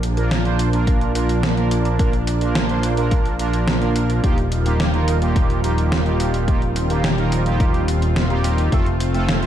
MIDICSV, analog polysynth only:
0, 0, Header, 1, 2, 480
1, 0, Start_track
1, 0, Tempo, 560748
1, 1707, Time_signature, 4, 2, 24, 8
1, 8100, End_track
2, 0, Start_track
2, 0, Title_t, "Analog polysynth"
2, 0, Program_c, 0, 90
2, 145, Note_on_c, 0, 58, 86
2, 145, Note_on_c, 0, 62, 79
2, 145, Note_on_c, 0, 65, 79
2, 145, Note_on_c, 0, 70, 94
2, 357, Note_off_c, 0, 58, 0
2, 357, Note_off_c, 0, 62, 0
2, 357, Note_off_c, 0, 65, 0
2, 357, Note_off_c, 0, 70, 0
2, 386, Note_on_c, 0, 58, 92
2, 386, Note_on_c, 0, 62, 83
2, 386, Note_on_c, 0, 65, 87
2, 386, Note_on_c, 0, 72, 103
2, 597, Note_off_c, 0, 58, 0
2, 597, Note_off_c, 0, 62, 0
2, 597, Note_off_c, 0, 65, 0
2, 597, Note_off_c, 0, 72, 0
2, 625, Note_on_c, 0, 58, 93
2, 625, Note_on_c, 0, 62, 85
2, 625, Note_on_c, 0, 65, 84
2, 625, Note_on_c, 0, 70, 101
2, 957, Note_off_c, 0, 58, 0
2, 957, Note_off_c, 0, 62, 0
2, 957, Note_off_c, 0, 65, 0
2, 957, Note_off_c, 0, 70, 0
2, 986, Note_on_c, 0, 58, 85
2, 986, Note_on_c, 0, 62, 78
2, 986, Note_on_c, 0, 65, 81
2, 986, Note_on_c, 0, 70, 97
2, 1318, Note_off_c, 0, 58, 0
2, 1318, Note_off_c, 0, 62, 0
2, 1318, Note_off_c, 0, 65, 0
2, 1318, Note_off_c, 0, 70, 0
2, 1346, Note_on_c, 0, 58, 87
2, 1346, Note_on_c, 0, 62, 80
2, 1346, Note_on_c, 0, 65, 81
2, 1347, Note_on_c, 0, 70, 97
2, 1678, Note_off_c, 0, 58, 0
2, 1678, Note_off_c, 0, 62, 0
2, 1678, Note_off_c, 0, 65, 0
2, 1678, Note_off_c, 0, 70, 0
2, 1706, Note_on_c, 0, 62, 80
2, 1707, Note_on_c, 0, 58, 86
2, 1707, Note_on_c, 0, 65, 81
2, 1707, Note_on_c, 0, 70, 96
2, 1827, Note_off_c, 0, 58, 0
2, 1827, Note_off_c, 0, 62, 0
2, 1827, Note_off_c, 0, 65, 0
2, 1827, Note_off_c, 0, 70, 0
2, 2067, Note_on_c, 0, 58, 86
2, 2067, Note_on_c, 0, 62, 79
2, 2067, Note_on_c, 0, 65, 77
2, 2067, Note_on_c, 0, 70, 96
2, 2278, Note_off_c, 0, 58, 0
2, 2278, Note_off_c, 0, 62, 0
2, 2278, Note_off_c, 0, 65, 0
2, 2278, Note_off_c, 0, 70, 0
2, 2306, Note_on_c, 0, 62, 86
2, 2306, Note_on_c, 0, 65, 84
2, 2306, Note_on_c, 0, 72, 104
2, 2307, Note_on_c, 0, 58, 93
2, 2518, Note_off_c, 0, 58, 0
2, 2518, Note_off_c, 0, 62, 0
2, 2518, Note_off_c, 0, 65, 0
2, 2518, Note_off_c, 0, 72, 0
2, 2546, Note_on_c, 0, 62, 84
2, 2546, Note_on_c, 0, 70, 101
2, 2547, Note_on_c, 0, 58, 91
2, 2547, Note_on_c, 0, 65, 85
2, 2878, Note_off_c, 0, 58, 0
2, 2878, Note_off_c, 0, 62, 0
2, 2878, Note_off_c, 0, 65, 0
2, 2878, Note_off_c, 0, 70, 0
2, 2906, Note_on_c, 0, 58, 89
2, 2906, Note_on_c, 0, 62, 81
2, 2906, Note_on_c, 0, 65, 80
2, 2906, Note_on_c, 0, 70, 97
2, 3237, Note_off_c, 0, 58, 0
2, 3237, Note_off_c, 0, 65, 0
2, 3237, Note_off_c, 0, 70, 0
2, 3238, Note_off_c, 0, 62, 0
2, 3266, Note_on_c, 0, 58, 88
2, 3266, Note_on_c, 0, 62, 81
2, 3266, Note_on_c, 0, 65, 80
2, 3266, Note_on_c, 0, 70, 100
2, 3597, Note_off_c, 0, 58, 0
2, 3597, Note_off_c, 0, 65, 0
2, 3597, Note_off_c, 0, 70, 0
2, 3598, Note_off_c, 0, 62, 0
2, 3626, Note_on_c, 0, 58, 87
2, 3626, Note_on_c, 0, 63, 82
2, 3626, Note_on_c, 0, 65, 81
2, 3626, Note_on_c, 0, 67, 97
2, 3747, Note_off_c, 0, 58, 0
2, 3747, Note_off_c, 0, 63, 0
2, 3747, Note_off_c, 0, 65, 0
2, 3747, Note_off_c, 0, 67, 0
2, 3986, Note_on_c, 0, 58, 87
2, 3986, Note_on_c, 0, 63, 80
2, 3986, Note_on_c, 0, 65, 81
2, 3986, Note_on_c, 0, 67, 95
2, 4197, Note_off_c, 0, 58, 0
2, 4197, Note_off_c, 0, 63, 0
2, 4197, Note_off_c, 0, 65, 0
2, 4197, Note_off_c, 0, 67, 0
2, 4225, Note_on_c, 0, 70, 100
2, 4226, Note_on_c, 0, 58, 94
2, 4226, Note_on_c, 0, 63, 85
2, 4226, Note_on_c, 0, 65, 85
2, 4437, Note_off_c, 0, 58, 0
2, 4437, Note_off_c, 0, 63, 0
2, 4437, Note_off_c, 0, 65, 0
2, 4437, Note_off_c, 0, 70, 0
2, 4466, Note_on_c, 0, 58, 92
2, 4466, Note_on_c, 0, 63, 85
2, 4466, Note_on_c, 0, 65, 86
2, 4466, Note_on_c, 0, 67, 102
2, 4798, Note_off_c, 0, 58, 0
2, 4798, Note_off_c, 0, 63, 0
2, 4798, Note_off_c, 0, 65, 0
2, 4798, Note_off_c, 0, 67, 0
2, 4825, Note_on_c, 0, 58, 88
2, 4825, Note_on_c, 0, 63, 81
2, 4825, Note_on_c, 0, 65, 80
2, 4825, Note_on_c, 0, 67, 94
2, 5157, Note_off_c, 0, 58, 0
2, 5157, Note_off_c, 0, 63, 0
2, 5157, Note_off_c, 0, 65, 0
2, 5157, Note_off_c, 0, 67, 0
2, 5186, Note_on_c, 0, 58, 88
2, 5186, Note_on_c, 0, 65, 81
2, 5186, Note_on_c, 0, 67, 101
2, 5187, Note_on_c, 0, 63, 81
2, 5518, Note_off_c, 0, 58, 0
2, 5518, Note_off_c, 0, 63, 0
2, 5518, Note_off_c, 0, 65, 0
2, 5518, Note_off_c, 0, 67, 0
2, 5546, Note_on_c, 0, 58, 90
2, 5546, Note_on_c, 0, 63, 79
2, 5546, Note_on_c, 0, 65, 81
2, 5546, Note_on_c, 0, 67, 95
2, 5667, Note_off_c, 0, 58, 0
2, 5667, Note_off_c, 0, 63, 0
2, 5667, Note_off_c, 0, 65, 0
2, 5667, Note_off_c, 0, 67, 0
2, 5905, Note_on_c, 0, 67, 96
2, 5906, Note_on_c, 0, 58, 86
2, 5906, Note_on_c, 0, 63, 77
2, 5906, Note_on_c, 0, 65, 80
2, 6117, Note_off_c, 0, 58, 0
2, 6117, Note_off_c, 0, 63, 0
2, 6117, Note_off_c, 0, 65, 0
2, 6117, Note_off_c, 0, 67, 0
2, 6146, Note_on_c, 0, 58, 93
2, 6146, Note_on_c, 0, 63, 87
2, 6146, Note_on_c, 0, 65, 86
2, 6146, Note_on_c, 0, 70, 106
2, 6357, Note_off_c, 0, 58, 0
2, 6357, Note_off_c, 0, 65, 0
2, 6357, Note_off_c, 0, 70, 0
2, 6358, Note_off_c, 0, 63, 0
2, 6385, Note_on_c, 0, 58, 92
2, 6385, Note_on_c, 0, 65, 82
2, 6385, Note_on_c, 0, 67, 102
2, 6386, Note_on_c, 0, 63, 83
2, 6717, Note_off_c, 0, 58, 0
2, 6717, Note_off_c, 0, 63, 0
2, 6717, Note_off_c, 0, 65, 0
2, 6717, Note_off_c, 0, 67, 0
2, 7105, Note_on_c, 0, 58, 90
2, 7105, Note_on_c, 0, 63, 87
2, 7105, Note_on_c, 0, 65, 82
2, 7105, Note_on_c, 0, 67, 102
2, 7437, Note_off_c, 0, 58, 0
2, 7437, Note_off_c, 0, 63, 0
2, 7437, Note_off_c, 0, 65, 0
2, 7437, Note_off_c, 0, 67, 0
2, 7464, Note_on_c, 0, 57, 87
2, 7464, Note_on_c, 0, 65, 80
2, 7464, Note_on_c, 0, 69, 94
2, 7465, Note_on_c, 0, 60, 83
2, 7586, Note_off_c, 0, 57, 0
2, 7586, Note_off_c, 0, 60, 0
2, 7586, Note_off_c, 0, 65, 0
2, 7586, Note_off_c, 0, 69, 0
2, 7825, Note_on_c, 0, 57, 86
2, 7825, Note_on_c, 0, 60, 78
2, 7825, Note_on_c, 0, 65, 78
2, 7825, Note_on_c, 0, 69, 94
2, 8037, Note_off_c, 0, 57, 0
2, 8037, Note_off_c, 0, 60, 0
2, 8037, Note_off_c, 0, 65, 0
2, 8037, Note_off_c, 0, 69, 0
2, 8065, Note_on_c, 0, 57, 93
2, 8065, Note_on_c, 0, 60, 84
2, 8065, Note_on_c, 0, 65, 85
2, 8065, Note_on_c, 0, 72, 103
2, 8100, Note_off_c, 0, 57, 0
2, 8100, Note_off_c, 0, 60, 0
2, 8100, Note_off_c, 0, 65, 0
2, 8100, Note_off_c, 0, 72, 0
2, 8100, End_track
0, 0, End_of_file